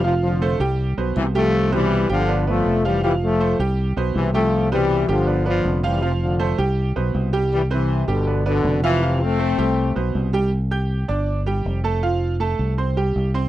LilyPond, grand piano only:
\new Staff \with { instrumentName = "Grand piano" } { \time 4/4 \key c \major \tempo 4 = 160 <f f' f''>4 <a a' c''>8 <g g' g''>4 <b, b' c''>4 <g g' g''>8~ | <g g' g''>8 <b, b' c''>4 <g g' g''>8 <b b' d''>8 <b b' d''>4 <f f' f''>8 | <f f' f''>4 <a a' c''>8 <g g' g''>4 <b, b' c''>4 <g g' g''>8~ | <g g' g''>8 <b, b' c''>4 <g g' g''>8 <b b' d''>8 <b b' d''>4 <f f' f''>8 |
<f f' f''>4 <a a' c''>8 <g g' g''>4 <b, b' c''>4 <g g' g''>8~ | <g g' g''>8 <c' b' c''>4 <g g' g''>8 <b b' d''>8 <b b' d''>4 <f f' f''>8 | <f f' f''>4 <a a' c''>8 <g g' g''>4 <b, b' c''>4 <g g' g''>8 | r8 <g' g'' g'''>4 <d' d'' d'''>4 <g g' g''>4 <a a' a''>8 |
<f f' f''>4 <a a' a''>4 <c' c'' c'''>8 <g g' g''>4 <c' c'' c'''>8 | }